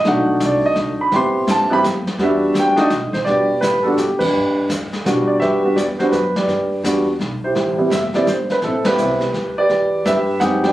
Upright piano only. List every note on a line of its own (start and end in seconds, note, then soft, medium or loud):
0.05 1.05 A3 medium
0.05 1.05 D4 medium
0.05 1.05 D#4 medium
0.05 1.06 F#4 medium
0.05 0.40 F#5 loud
0.45 0.65 D5 medium
0.66 0.77 D#5 medium
1.01 1.13 B5 medium
1.12 1.66 B3 medium
1.12 1.67 C4 medium
1.12 1.67 E4 medium
1.12 1.67 G4 medium
1.12 1.47 C6 loud
1.51 1.72 A5 loud
1.70 1.82 B3 medium
1.70 1.83 C4 medium
1.70 1.83 E4 medium
1.70 1.83 G4 medium
1.70 1.80 B5 loud
2.19 2.73 G3 medium
2.19 2.74 B3 medium
2.19 2.74 D4 medium
2.19 2.75 F#4 medium
2.19 2.55 E5 medium
2.59 2.80 G5 loud
2.76 2.89 A3 medium
2.76 2.89 D4 medium
2.76 2.89 D#4 medium
2.76 2.90 F#4 loud
2.81 3.19 D#5 medium
3.13 3.18 C5 loud
3.25 3.47 G3 medium
3.25 3.47 B3 medium
3.25 3.47 D4 soft
3.25 3.48 F#4 soft
3.25 3.81 G4 medium
3.25 3.59 B4 medium
3.25 3.63 D5 medium
3.61 3.85 B4 medium
3.83 3.97 G3 medium
3.83 3.97 B3 medium
3.83 3.97 D4 medium
3.83 3.98 F#4 medium
3.83 3.97 A4 medium
3.97 4.21 G4 medium
4.19 4.67 D4 soft
4.19 4.67 G4 medium
4.19 4.65 B4 medium
5.05 5.59 G3 medium
5.05 5.60 B3 medium
5.05 5.60 D4 medium
5.05 5.60 F#4 medium
5.27 5.32 D5 medium
5.40 5.96 G4 medium
5.40 5.96 B4 medium
5.40 5.77 E5 medium
5.63 5.75 G3 medium
5.63 5.75 B3 medium
5.63 5.76 D4 soft
5.63 5.76 F#4 medium
5.76 5.81 D5 medium
5.99 6.11 G3 medium
5.99 6.11 B3 medium
5.99 6.12 D4 medium
5.99 6.12 F#4 medium
5.99 6.13 C5 medium
6.12 6.34 B4 medium
6.37 6.82 G4 medium
6.37 6.82 B4 medium
6.37 6.81 D5 medium
6.83 7.04 G3 medium
6.83 7.05 B3 medium
6.83 7.05 D4 medium
6.83 7.05 F#4 medium
7.44 7.77 E4 medium
7.44 7.89 G4 soft
7.44 7.89 C5 medium
7.77 7.89 G3 medium
7.77 7.90 B3 medium
7.77 7.90 C4 medium
7.77 7.90 E4 medium
7.92 8.15 E5 medium
8.14 8.26 G3 medium
8.14 8.26 B3 medium
8.14 8.26 C4 medium
8.14 8.27 E4 medium
8.14 8.28 D5 medium
8.28 8.49 C5 medium
8.52 8.57 B4 medium
8.64 8.98 C4 medium
8.64 8.86 E4 medium
8.64 8.85 A4 medium
8.86 8.98 E4 medium
8.86 9.54 G4 medium
8.86 9.53 B4 medium
8.98 9.19 G3 medium
8.98 9.19 B3 medium
8.98 9.20 C4 medium
8.98 9.20 E4 medium
9.58 10.04 G4 medium
9.58 10.04 B4 medium
9.58 10.08 D5 loud
10.06 10.40 G4 medium
10.06 10.61 B4 medium
10.06 10.39 E5 medium
10.40 10.61 G#3 medium
10.40 10.62 C4 medium
10.40 10.62 D#4 medium
10.40 10.62 G4 medium
10.40 10.64 F#5 loud
10.63 10.73 F#3 medium
10.63 10.73 G3 medium
10.63 10.73 B3 medium
10.63 10.73 D4 medium
10.63 10.73 B4 medium
10.63 10.73 D5 medium
10.63 10.73 G5 loud